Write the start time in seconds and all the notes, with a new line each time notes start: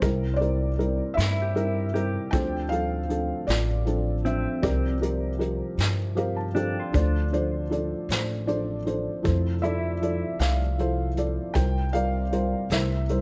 0.02 C2 C3 G3 C4 E4 A#4, kick, closed hi-hat
0.34 C5 D5
0.39 G3 C4 E4 A#4, closed hi-hat
0.77 G3 C4 E4 A#4, closed hi-hat
1.14 G2 E4 E5
1.18 snare, closed hi-hat
1.42 G4
1.54 G3 C4 E4 A#4, closed hi-hat
1.93 G3 C4 E4 G4 A#4, closed hi-hat
2.31 D2 D3 F3 C4 D4 G5, kick, closed hi-hat
2.35 A4 C5
2.69 F3 C4 D4 A4 F5, closed hi-hat
3.08 F3 C4 D4 A4, closed hi-hat
3.47 A1 F4 D5, snare, closed hi-hat
3.85 F3 C4 D4 A4, closed hi-hat
4.24 F3 C4 D4 E5, closed hi-hat
4.62 C2 C3 F3 C4 F4 G4 A#4 D5, kick, closed hi-hat
5.00 F3 C4 G4 A#4, closed hi-hat
5.39 F3 C4 G4 A#4, closed hi-hat
5.78 G2, snare, closed hi-hat
6.15 F3 C4 G4 A#4 F5, closed hi-hat
6.36 A5
6.54 F3 C4 D4 G4 A4 G5, closed hi-hat
6.80 F4
6.93 D2 D3 F3 D4 F4 A4 C5 D5, kick, closed hi-hat
7.32 F3 D4 A4 C5 D5, closed hi-hat
7.70 F3 D4 A4 D5, closed hi-hat
8.09 A1 C5, snare, closed hi-hat
8.47 F3 D4 A4 C5 D5, closed hi-hat
8.85 F3 D4 A4 C5, closed hi-hat
9.23 F1 F2 F3 E4 A4 C5, kick, closed hi-hat
9.62 F3 E4 A4 D5 E5, closed hi-hat
10.01 F3 E4 A4 D5, closed hi-hat
10.39 C2 F5, snare, closed hi-hat
10.78 F3 E4 A4 C5, closed hi-hat
11.17 F3 E4 A4 D5, closed hi-hat
11.54 C2 C3 G3 F4 A#4 C5 G5, kick, closed hi-hat
11.93 G3 F4 A#4 D5 F5, closed hi-hat
12.32 G3 F4 A#4 C5, closed hi-hat
12.70 C2 C3 G3 E4 A#4 C5 E5, snare, closed hi-hat
13.09 G3 E4 A#4 C5, closed hi-hat